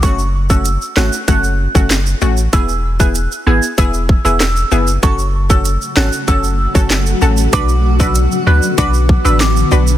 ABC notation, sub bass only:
X:1
M:4/4
L:1/16
Q:1/4=96
K:F#m
V:1 name="Sub bass" clef=bass
F,,,4- F,,, z G,,, z F,,,3 F,,,3 A,,,2 | E,,,4- E,,, z G,,, z E,,,3 E,,,3 F,,,2 | F,,,4- F,,, z G,,, z F,,,3 F,,,3 A,,,2 | B,,,4- B,,, z D,, z B,,,3 A,,,3 B,,,2 |]